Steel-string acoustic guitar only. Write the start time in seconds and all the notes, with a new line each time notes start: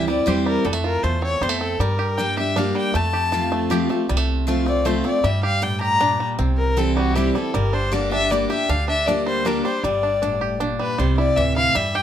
Already playing: G2
0.07 C4 E4
0.26 E3 G3 C4 E4
0.65 F2
1.04 E2
1.43 F2
1.81 G2
2.18 G3 A#3 D4 G4
2.38 D4 G4
2.56 G3 A#3 D4 G4
2.95 F2
3.32 F3 A3 C4 F4
3.70 F3 A3 C4 F4
3.89 C4 F4
4.09 C3
4.47 F3 A3 C4 F4
4.66 C4 F4
4.85 F3 A3 C4 F4
5.04 C4 F4
5.24 G2
5.62 A2
6.00 A#2
6.39 C3
6.77 E3 G3 C4 E4
7.15 E3 G3 C4 E4
7.35 C4 E4
7.55 G2
7.92 G3 A#3 D4 G4
8.11 D4 G4
8.30 G3 A#3 D4 G4
8.50 D4 G4
8.69 D3
9.07 G3 A#3 D4 G4
9.45 G3 A#3 D4 G4
9.65 D4 G4
9.84 G2
10.23 A2
10.61 A#2
10.99 C3
11.37 A2
11.75 G2